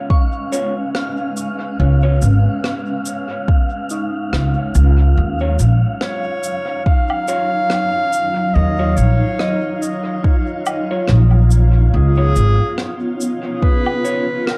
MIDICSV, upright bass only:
0, 0, Header, 1, 2, 480
1, 0, Start_track
1, 0, Key_signature, -6, "minor"
1, 0, Tempo, 845070
1, 1020, Time_signature, 4, 2, 24, 8
1, 8280, End_track
2, 0, Start_track
2, 0, Title_t, "Upright bass"
2, 0, Program_c, 0, 32
2, 1020, Note_on_c, 0, 37, 97
2, 1235, Note_off_c, 0, 37, 0
2, 1261, Note_on_c, 0, 32, 79
2, 1381, Note_off_c, 0, 32, 0
2, 2459, Note_on_c, 0, 37, 78
2, 2580, Note_off_c, 0, 37, 0
2, 2698, Note_on_c, 0, 37, 96
2, 2914, Note_off_c, 0, 37, 0
2, 2938, Note_on_c, 0, 39, 92
2, 3154, Note_off_c, 0, 39, 0
2, 3177, Note_on_c, 0, 34, 78
2, 3299, Note_off_c, 0, 34, 0
2, 4858, Note_on_c, 0, 39, 93
2, 5075, Note_off_c, 0, 39, 0
2, 5099, Note_on_c, 0, 34, 81
2, 5220, Note_off_c, 0, 34, 0
2, 6300, Note_on_c, 0, 34, 101
2, 6760, Note_off_c, 0, 34, 0
2, 6780, Note_on_c, 0, 37, 93
2, 6995, Note_off_c, 0, 37, 0
2, 7021, Note_on_c, 0, 32, 79
2, 7141, Note_off_c, 0, 32, 0
2, 8280, End_track
0, 0, End_of_file